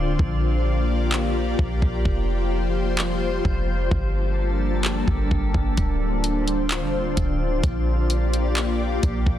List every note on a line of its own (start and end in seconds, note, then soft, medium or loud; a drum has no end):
0.00 0.18 D1 loud
0.00 0.18 D3 medium
0.00 0.18 C4 medium
0.00 0.18 D4 medium
0.00 0.18 F4 medium
0.00 3.88 F4 medium
0.00 0.18 C5 medium
0.00 2.02 D5 medium
0.00 impact medium
0.19 1.55 A#1 loud
0.19 2.04 A#3 medium
0.19 3.88 G4 medium
0.19 2.04 G4 medium
0.19 2.04 D5 medium
0.19 kick loud
1.12 clap loud
1.59 1.81 A#1 loud
1.59 kick medium
1.82 2.04 A#1 loud
1.82 kick loud
2.05 3.41 F1 loud
2.05 3.90 F3 medium
2.05 3.90 G3 medium
2.05 3.90 F4 medium
2.05 3.90 C5 medium
2.05 kick loud
2.98 clap loud
3.45 3.90 F1 loud
3.45 kick loud
3.91 5.04 G1 loud
3.91 5.75 G3 medium
3.91 5.75 A#3 medium
3.91 7.60 D4 medium
3.91 5.75 G4 medium
3.91 5.75 A4 medium
3.91 5.76 A#4 medium
3.91 5.75 A5 medium
3.91 kick loud
4.85 clap loud
5.08 5.30 G1 loud
5.08 kick medium
5.31 5.53 G1 loud
5.31 kick loud
5.54 5.77 G1 loud
5.54 kick medium
5.77 6.84 D1 loud
5.77 7.62 D3 medium
5.77 7.62 C4 medium
5.77 7.62 F4 medium
5.77 9.39 F4 medium
5.77 7.62 C5 medium
5.77 9.39 D5 medium
5.77 kick loud
5.77 closed hi-hat medium
6.24 closed hi-hat medium
6.48 closed hi-hat medium
6.71 clap loud
6.71 closed hi-hat medium
6.82 7.01 E1 loud
7.00 7.16 D1 loud
7.17 7.62 D1 loud
7.17 kick medium
7.17 closed hi-hat medium
7.64 8.99 A#1 loud
7.64 9.39 A#3 medium
7.64 9.39 G4 medium
7.64 9.39 D5 medium
7.64 kick loud
7.64 closed hi-hat medium
8.10 closed hi-hat medium
8.34 closed hi-hat medium
8.57 clap loud
8.57 closed hi-hat medium
9.03 9.25 A#1 loud
9.03 kick loud
9.03 closed hi-hat medium
9.26 9.39 A#1 loud
9.26 kick medium